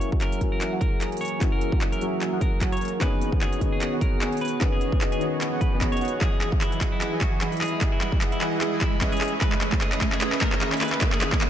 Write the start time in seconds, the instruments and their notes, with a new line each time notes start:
Already playing: felt piano E3 A#3 C#4 F#4, ambient pad E3 A#3 F#4, riser
0.01 closed hi-hat
0.12 supersaw synth F#3 F#4 G#4 A#4 E5, kick
0.21 clean electric guitar A#4, clap, closed hi-hat
0.32 closed hi-hat
0.39 felt piano E3 A#3 C#4, supersaw synth F#3 F#4 G#4 A#4 E5, kick, closed hi-hat
0.43 felt piano F#4
0.52 clean electric guitar A#4
0.61 clap, closed hi-hat
0.72 supersaw synth F#3 F#4 G#4 A#4 F#5
0.81 clean electric guitar A#4, kick, closed hi-hat
1.01 supersaw synth F#3 F#4 G#4 A#4 G#5, clap, closed hi-hat
1.12 closed hi-hat
1.17 closed hi-hat
1.21 clean electric guitar C#5, closed hi-hat
1.25 closed hi-hat
1.28 closed hi-hat
1.39 felt piano E3 A#3 C#4, supersaw synth F#3 F#4 G#4 A#4 E5, kick, clap, closed hi-hat
1.43 felt piano F#4
1.52 clean electric guitar A#4
1.61 closed hi-hat
1.72 supersaw synth F#3 F#4 G#4 A#4 E5, kick
1.81 clap, closed hi-hat
1.92 clean electric guitar A#4, closed hi-hat
1.99 felt piano E3 A#3 C#4 F#4, supersaw synth F#3 F#4 G#4 A#4 E5, closed hi-hat
2.21 clap, closed hi-hat
2.33 supersaw synth F#3 F#4 G#4 A#4 F#5
2.41 clean electric guitar A#4, kick, closed hi-hat
2.61 supersaw synth F#3 F#4 G#4 A#4 G#5, kick, clap, closed hi-hat
2.72 clean electric guitar C#5, closed hi-hat
2.77 closed hi-hat
2.81 closed hi-hat
2.85 closed hi-hat
2.88 closed hi-hat
2.99 felt piano D#3 B3 C#4 G#4, ambient pad D#3 B3 C#4 G#4, supersaw synth B3 F#4 G#4 C#5 D#5, clean electric guitar B4, kick, clap, closed hi-hat
3.21 closed hi-hat
3.32 supersaw synth B3 F#4 G#4 C#5 D#5, kick
3.41 clean electric guitar G#4, clap, closed hi-hat
3.53 closed hi-hat
3.59 felt piano D#3 B3 C#4, supersaw synth B3 F#4 G#4 C#5 D#5, kick, closed hi-hat
3.63 felt piano G#4
3.72 clean electric guitar G#4
3.81 clap, closed hi-hat
3.92 supersaw synth B3 F#4 G#4 C#5 F#5
4.01 clean electric guitar A#4, kick, closed hi-hat
4.21 supersaw synth B3 F#4 G#4 C#5 G#5, clap, closed hi-hat
4.33 closed hi-hat
4.37 closed hi-hat
4.41 clean electric guitar B4, closed hi-hat
4.45 closed hi-hat
4.48 closed hi-hat
4.59 felt piano D#3 B3 C#4, supersaw synth B3 F#4 G#4 C#5 D#5, kick, clap, closed hi-hat
4.63 felt piano G#4
4.72 clean electric guitar G#4
4.81 closed hi-hat
4.92 supersaw synth B3 F#4 G#4 C#5 D#5, kick
5.01 clap, closed hi-hat
5.12 clean electric guitar G#4, closed hi-hat
5.19 felt piano D#3 B3 C#4 G#4, supersaw synth B3 F#4 G#4 C#5 D#5, closed hi-hat
5.41 clap, closed hi-hat
5.52 supersaw synth B3 F#4 G#4 C#5 F#5
5.61 clean electric guitar B4, kick, closed hi-hat
5.72 supersaw synth B3 F#4 G#4 C#5 D#5
5.81 kick, clap, closed hi-hat
5.92 clean electric guitar C#5, closed hi-hat
5.97 closed hi-hat
6.01 supersaw synth B3 F#4 G#4 C#5 F#5, closed hi-hat
6.05 closed hi-hat
6.08 closed hi-hat
6.21 supersaw synth E3 E4 G#4 D#5 F#5, ambient pad E3 G#4 D#5, clean electric guitar G#4, synth arpeggio sound G#4, kick, clap, closed hi-hat
6.32 synth arpeggio sound D#5
6.41 synth arpeggio sound G#4, clap, closed hi-hat
6.52 supersaw synth E3 E4 G#4 D#5 F#5, synth arpeggio sound E5, kick
6.61 clean electric guitar E4, synth arpeggio sound G#4, clap, closed hi-hat
6.72 synth arpeggio sound G#5, closed hi-hat
6.81 supersaw synth E3 E4 G#4 D#5 F#5, synth arpeggio sound G#4, kick, clap, closed hi-hat
6.92 clean electric guitar E4, synth arpeggio sound D#5
7.01 synth arpeggio sound G#4, clap, closed hi-hat
7.12 supersaw synth E3 E4 G#4 D#5 G#5, synth arpeggio sound E5
7.21 clean electric guitar F#4, synth arpeggio sound G#4, kick, clap, closed hi-hat
7.32 synth arpeggio sound G#5
7.41 supersaw synth E3 E4 G#4 D#5 B5, synth arpeggio sound G#4, clap, closed hi-hat
7.52 synth arpeggio sound D#5, closed hi-hat
7.57 closed hi-hat
7.61 synth arpeggio sound G#4, clean electric guitar G#4, clap, closed hi-hat, open hi-hat
7.68 closed hi-hat
7.72 synth arpeggio sound E5
7.81 supersaw synth E3 E4 G#4 D#5 F#5, synth arpeggio sound G#4, kick, clap, closed hi-hat
7.92 clean electric guitar E4, synth arpeggio sound G#5
8.01 synth arpeggio sound G#4, clap, closed hi-hat
8.12 supersaw synth E3 E4 G#4 D#5 F#5, synth arpeggio sound D#5, kick
8.21 synth arpeggio sound G#4, clap, closed hi-hat
8.32 clean electric guitar E4, synth arpeggio sound E5, closed hi-hat
8.41 supersaw synth E3 E4 G#4 D#5 F#5, synth arpeggio sound G#4, clap, closed hi-hat
8.52 synth arpeggio sound G#5
8.61 synth arpeggio sound G#4, clap, closed hi-hat
8.72 supersaw synth E3 E4 G#4 D#5 G#5, synth arpeggio sound D#5
8.81 clean electric guitar E4, synth arpeggio sound G#4, kick, clap, closed hi-hat
8.92 synth arpeggio sound E5
9.01 supersaw synth C#4 G#4 B4 D#5 E5, synth arpeggio sound G#4, kick, clap, closed hi-hat
9.12 clean electric guitar G#4, synth arpeggio sound G#5, closed hi-hat
9.17 closed hi-hat
9.21 ambient pad D#3 C#4 B4, synth arpeggio sound G#4, clap, closed hi-hat, open hi-hat
9.28 closed hi-hat
9.32 synth arpeggio sound C#5
9.41 supersaw synth C#4 G#4 B4 D#5 E5, synth arpeggio sound G#4, clean electric guitar B4, kick, clap, closed hi-hat
9.52 synth arpeggio sound D#5, clap
9.61 synth arpeggio sound G#4, clap, closed hi-hat
9.72 supersaw synth C#4 G#4 B4 D#5 E5, synth arpeggio sound E5, kick, clap
9.81 clean electric guitar G#4, synth arpeggio sound G#4, clap, closed hi-hat
9.92 synth arpeggio sound C#5, clap, closed hi-hat
10.01 supersaw synth C#4 G#4 B4 D#5 E5, synth arpeggio sound G#4, kick, clap, closed hi-hat
10.12 clean electric guitar G#4, synth arpeggio sound D#5, clap
10.21 synth arpeggio sound G#4, clap, closed hi-hat
10.32 supersaw synth C#4 G#4 B4 D#5 E5, synth arpeggio sound E5, clap
10.41 synth arpeggio sound G#4, clean electric guitar A#4, kick, clap, closed hi-hat
10.52 synth arpeggio sound C#5, clap
10.61 supersaw synth C#4 G#4 B4 D#5 E5, synth arpeggio sound G#4, clap, closed hi-hat
10.72 synth arpeggio sound D#5, clap, closed hi-hat
10.77 closed hi-hat
10.81 synth arpeggio sound G#4, clean electric guitar B4, clap, closed hi-hat, open hi-hat
10.88 closed hi-hat
10.92 synth arpeggio sound E5, clap
11.01 supersaw synth C#4 G#4 B4 D#5 E5, synth arpeggio sound G#4, kick, clap, closed hi-hat
11.12 clean electric guitar G#4, synth arpeggio sound C#5, clap
11.21 synth arpeggio sound G#4, clap, closed hi-hat
11.32 supersaw synth C#4 G#4 B4 D#5 E5, synth arpeggio sound D#5, kick, clap
11.41 synth arpeggio sound G#4, clap, closed hi-hat